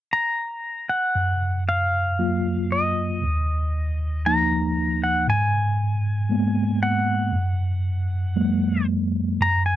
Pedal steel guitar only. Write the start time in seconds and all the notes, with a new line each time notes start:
0.13 A#5
0.89 F#5
1.69 F5
2.72 D#5
4.26 A#5
5.03 F#5
5.30 G#5
6.83 F#5
9.42 A#5
9.66 G#5